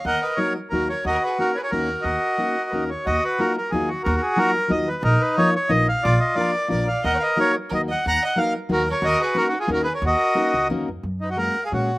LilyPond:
<<
  \new Staff \with { instrumentName = "Accordion" } { \time 3/4 \key ees \minor \tempo 4 = 180 << { ges''8 ees''8 des''8 r8 bes'8 des''8 | ees''8 ces''8 bes'8 des''32 ces''32 des''16 bes'4 | ees''4.~ ees''16. ces''32 bes'8 des''8 | ees''8 ces''8 bes'8 bes'8 aes'8 ges'8 |
bes'16. bes'32 aes'8 bes'4 ees''8 ces''8 | bes'8 ces''8 des''8 des''8 ees''8 f''8 | d''8 ees''8 d''4 d''8 f''8 | ges''16. f''32 ees''8 des''8 r8 ees''8 ges''8 |
bes''8 ges''8 f''8 r8 bes'8 des''8 | ees''8 ces''8 \tuplet 3/2 { bes'8 ges'8 aes'8 bes'8 ces''8 des''8 } | ees''2 r4 | \key fis \major r8 dis'16 fis'16 ais'8. gis'16 fis'8. r16 | } \\ { bes'4. r4. | ges'4. r4. | ges'2~ ges'8 r8 | ges'4. r4. |
ges'4. r4. | ees'4. r4. | f'4. r4. | bes'4. r4. |
ges''4. r4. | ges'4. r4. | ges'2 r4 | r2. | } >> }
  \new Staff \with { instrumentName = "Violin" } { \time 3/4 \key ees \minor ees''8 ces''8 bes'8 r8 ges'8 bes'8 | bes'8 aes'8 ges'8 bes'32 aes'32 bes'16 ges'4 | bes'2~ bes'8 r8 | r2. |
r2. | r2. | r4 bes'4 bes'8 d''8 | ees''16. des''32 ces''8 bes'8 r8 bes'8 ees''8 |
ges''8 ees''8 bes'8 r8 ges'8 bes'8 | bes'8 aes'8 \tuplet 3/2 { ges'8 ees'8 f'8 ges'8 aes'8 bes'8 } | bes'2 r4 | \key fis \major r8 b'16 dis''16 fis''8. eis''16 cis''8. r16 | }
  \new Staff \with { instrumentName = "Steel-string acoustic guitar" } { \time 3/4 \key ees \minor r4 <ges bes ees' ges'>8 r8 <ges bes ees' ges'>8 r8 | r4 <bes des' ees' ges'>8 r8 <bes des' ees' ges'>8 r8 | r4 <bes des' ees' ges'>8 r8 <bes des' ees' ges'>8 r8 | r4 <ges bes ees' f' ges'>8 r8 <ges bes ees' f' ges'>8 r8 |
r4 <ges bes ees' f' ges'>8 r8 <ges bes ees' f' ges'>8 r8 | r4 <f bes ees' f' bes'>8 r8 <f bes ees' f' bes'>8 r8 | r4 <f bes d' f' bes'>8 r8 <f bes d' f' bes'>8 r8 | r4 <ges bes ees' ges' bes'>8 r8 <ges bes ees' ges' bes'>8 r8 |
r4 <ges bes ees' ges' bes'>8 r8 <ges bes ees' ges' bes'>8 r8 | r4 <bes des' ees' ges' bes'>8 r8 <bes des' ees' ges' bes'>8 r8 | r4 <bes des' ees' ges' bes'>8 r8 <bes des' ees' ges' bes'>8 r8 | \key fis \major r4 <gis ais cis' fis'>8 r8 <gis ais cis' fis'>8 r8 | }
  \new Staff \with { instrumentName = "Upright bass" } { \clef bass \time 3/4 \key ees \minor ees,8 r4. ees,4 | ees,8 r4. ees,4 | ees,8 r4. ees,4 | ees,8 r4. ees,4 |
ees,8 r4. ees,4 | bes,,8 r4. bes,,4 | bes,,8 r4. bes,,4 | ees,8 r4. ees,4 |
ees,8 r4. ees,4 | ees,8 r4. ees,4 | ees,8 r4 des,8 ees,8 f,8 | \key fis \major fis,2 ais,4 | }
>>